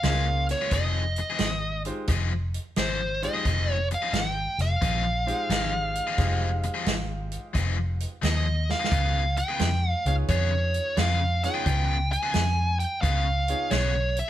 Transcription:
Already playing: lead electric guitar F5
0.03 fingered electric bass C#2, overdriven electric guitar A#2 G#3 C#4 F4, upright piano A#3 C#4 F4 G#4 C6, snare, closed hi-hat
0.28 muted overdriven electric guitar stroke
0.49 lead electric guitar C#5, snare, closed hi-hat
0.62 overdriven electric guitar A#2 G#3 C#4 F4
0.71 fingered electric bass F1, overdriven electric guitar F3 C4 D#4 G#4, lead electric guitar D#5, kick, snare, closed hi-hat
1.16 muted overdriven electric guitar stroke, closed hi-hat
1.30 overdriven electric guitar F3 C4 D#4 G#4
1.39 fingered electric bass G#1, snare, closed hi-hat
1.85 upright piano G#3 D#4 F4 G4 C5, closed hi-hat
2.08 fingered electric bass F1, overdriven electric guitar F3 C4 D#4 G#4, kick, snare, closed hi-hat
2.32 muted overdriven electric guitar stroke
2.54 closed hi-hat
2.76 fingered electric bass G#1, overdriven electric guitar F3 C4 D#4 G#4, lead electric guitar C5, snare, closed hi-hat
3.00 muted overdriven electric guitar stroke
3.22 upright piano G#3 D#4 F4 G4 C5, lead electric guitar D#5, closed hi-hat
3.34 overdriven electric guitar F3 C4 D#4 G#4
3.45 fingered electric bass F1, overdriven electric guitar F3 C4 D#4 G#4, kick, closed hi-hat
3.71 lead electric guitar C#5
3.91 lead electric guitar F5, muted overdriven electric guitar stroke, closed hi-hat
4.02 overdriven electric guitar F3 C4 D#4 G#4
4.13 fingered electric bass G#1, lead electric guitar F#5, snare, closed hi-hat
4.32 lead electric guitar G5
4.58 fingered electric bass F1, lead electric guitar F5, snare, closed hi-hat
4.81 fingered electric bass A#1, overdriven electric guitar F3 C4 D#4 G#4, kick, closed hi-hat
5.04 muted overdriven electric guitar stroke
5.26 upright piano G#3 D#4 F4 G4 C5, closed hi-hat
5.49 fingered electric bass G#1, overdriven electric guitar F3 C4 D#4 G#4, snare, closed hi-hat
5.73 muted overdriven electric guitar stroke
5.96 closed hi-hat
6.07 overdriven electric guitar F3 C4 D#4 G#4
6.18 fingered electric bass F1, overdriven electric guitar F3 C4 D#4 G#4, upright piano G#3 D#4 F4 G4 C5, kick, snare, closed hi-hat
6.63 muted overdriven electric guitar stroke, closed hi-hat
6.74 overdriven electric guitar F3 C4 D#4 G#4
6.86 fingered electric bass G#1, snare, closed hi-hat
7.32 closed hi-hat
7.54 fingered electric bass F1, overdriven electric guitar F3 C4 D#4 G#4, kick, snare, closed hi-hat
7.77 muted overdriven electric guitar stroke
8.00 closed hi-hat
8.22 fingered electric bass D#2, overdriven electric guitar F3 C4 D#4 G#4, lead electric guitar D#5, snare, closed hi-hat
8.46 muted overdriven electric guitar stroke
8.70 lead electric guitar F5, snare
8.79 overdriven electric guitar F3 C4 D#4 G#4
8.84 snare
8.92 fingered electric bass C#2, overdriven electric guitar C#3 B3 F4 G#4, kick, closed hi-hat
9.37 lead electric guitar G5, muted overdriven electric guitar stroke, closed hi-hat
9.49 overdriven electric guitar C#3 B3 F4 G#4
9.59 fingered electric bass F2, snare, closed hi-hat
9.91 lead electric guitar F5
10.05 fingered electric bass C#2, upright piano B3 D#4 F4 G#4 C#5, lead electric guitar F5, closed hi-hat
10.28 fingered electric bass F2, overdriven electric guitar C#3 B3 F4 G#4, lead electric guitar C#5, kick, closed hi-hat
10.51 muted overdriven electric guitar stroke
10.74 closed hi-hat
10.97 fingered electric bass F2, overdriven electric guitar C#3 B3 F4 G#4, lead electric guitar F5, snare, closed hi-hat
11.20 muted overdriven electric guitar stroke
11.43 upright piano B3 D#4 F4 G#4 C#5, lead electric guitar G5, snare, closed hi-hat
11.54 overdriven electric guitar C#3 B3 F4 G#4
11.65 fingered electric bass C#2, overdriven electric guitar C#3 B3 F4 G#4, kick, closed hi-hat
12.11 lead electric guitar G#5, muted overdriven electric guitar stroke, closed hi-hat
12.23 overdriven electric guitar C#3 B3 F4 G#4
12.34 fingered electric bass F2, snare, closed hi-hat
12.80 lead electric guitar G5, closed hi-hat
13.01 fingered electric bass C#2, overdriven electric guitar C#3 B3 F4 G#4, lead electric guitar F5, kick, closed hi-hat
13.25 muted overdriven electric guitar stroke
13.48 upright piano B3 D#4 F4 G#4 C#5, closed hi-hat
13.71 fingered electric bass B1, overdriven electric guitar C#3 B3 F4 G#4, lead electric guitar C#5, snare, closed hi-hat
13.95 muted overdriven electric guitar stroke
14.17 lead electric guitar E5, closed hi-hat

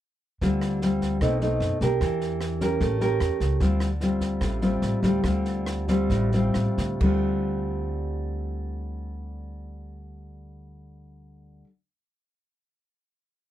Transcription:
0.41 upright bass D2, nylon-string guitar D3 G3 C4 F4, kick, snare
0.61 cross-stick, snare
0.82 nylon-string guitar G3 C4 F4, snare
1.01 kick, snare
1.21 upright bass B1, nylon-string guitar B2 A3 C4 D#4, kick, cross-stick, snare
1.41 nylon-string guitar A3 C4 D#4, snare
1.60 upright bass F#2, snare
1.81 upright bass B1, nylon-string guitar D4 G4 A#4, kick, snare
2.01 upright bass E2, nylon-string guitar E3, kick, cross-stick, snare
2.21 snare
2.41 cross-stick, snare
2.61 nylon-string guitar C#4 G4 A#4, kick, snare
2.81 upright bass A1, nylon-string guitar A3, kick, snare
3.01 nylon-string guitar C#4 G4 A#4, snare
3.20 upright bass E2, cross-stick, snare
3.40 upright bass C#2, kick, snare
3.60 upright bass D2, nylon-string guitar D3 G3 C4 F4, kick, snare
3.80 cross-stick, snare
4.00 nylon-string guitar G3 C4 F4, snare
4.21 kick, snare
4.41 upright bass A1, nylon-string guitar A2, kick, cross-stick, snare
4.62 nylon-string guitar G3 C4 F4, snare
4.82 upright bass A1, snare
5.03 upright bass D2, nylon-string guitar G3 C4 F4, kick, snare
5.24 upright bass D2, nylon-string guitar D3 G3 C4 F4, kick, cross-stick, snare
5.45 snare
5.66 cross-stick, snare
5.88 nylon-string guitar G3 C4 F4, kick, snare
6.10 upright bass A1, nylon-string guitar A2, kick, snare
6.32 nylon-string guitar G3 C4 F4, snare
6.54 upright bass A1, cross-stick, snare
6.78 upright bass D2, kick, snare
7.00 upright bass D2, nylon-string guitar D3 G3, kick, crash
7.04 nylon-string guitar C4 F4

